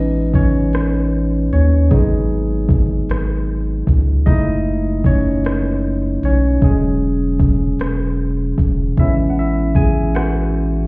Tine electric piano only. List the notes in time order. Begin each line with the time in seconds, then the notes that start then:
Already playing: G#3 B3 C#4 D#4 D#5
0.35 C#4 C#5
1.53 C#4 C#5
1.91 F#3 G#3 B3 D#4 G#4
4.26 G#3 A3 D#4 E4 D#5
5.06 C#4 C#5
6.25 C#4 C#5
6.63 F#3 G#3 C#4 G#4
8.99 G#3 B3 C#4 E4 E5
9.30 F#5
9.39 E4 E5
9.76 G#4 G#5
10.15 F#4 F#5